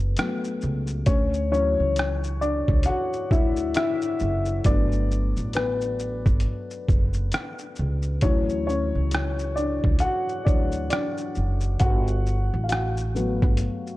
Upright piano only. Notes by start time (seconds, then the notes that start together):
Already playing: A4
0.18 F#3 A3 B3
1.06 C#4 C#5
1.51 E3 F#3 C#4 C#5
2.41 D4 D5
2.86 F#4 F#5
3.31 E4 E5
3.76 E4 E5
4.65 F#3 A3 B3 D4 D5
5.55 B3 B4
8.23 E3 F#3 C#4 E4 C#5
8.67 C#4 C#5
9.56 D4 D5
10.00 F#4 F#5
10.45 E3 F#3 D4 C#5 D5
10.90 D4 D5
11.80 F#4 F#5
12.63 F5
12.69 F#4 F#5
13.15 F#3 A3 B3